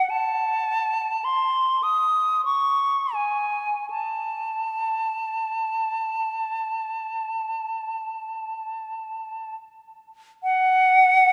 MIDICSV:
0, 0, Header, 1, 2, 480
1, 0, Start_track
1, 0, Tempo, 1134216
1, 527, Tempo, 1207243
1, 1007, Tempo, 1463415
1, 1487, Tempo, 1639344
1, 1488, Time_signature, 4, 2, 24, 8
1, 2447, Tempo, 1511335
1, 2927, Tempo, 1719198
1, 3407, Tempo, 1307190
1, 3738, End_track
2, 0, Start_track
2, 0, Title_t, "Flute"
2, 0, Program_c, 0, 73
2, 0, Note_on_c, 0, 78, 72
2, 41, Note_on_c, 0, 81, 67
2, 48, Note_off_c, 0, 78, 0
2, 527, Note_on_c, 0, 84, 70
2, 533, Note_off_c, 0, 81, 0
2, 760, Note_on_c, 0, 87, 64
2, 766, Note_off_c, 0, 84, 0
2, 1004, Note_off_c, 0, 87, 0
2, 1006, Note_on_c, 0, 85, 64
2, 1234, Note_on_c, 0, 80, 52
2, 1239, Note_off_c, 0, 85, 0
2, 1481, Note_off_c, 0, 80, 0
2, 1483, Note_on_c, 0, 81, 54
2, 3163, Note_off_c, 0, 81, 0
2, 3410, Note_on_c, 0, 78, 99
2, 3738, Note_off_c, 0, 78, 0
2, 3738, End_track
0, 0, End_of_file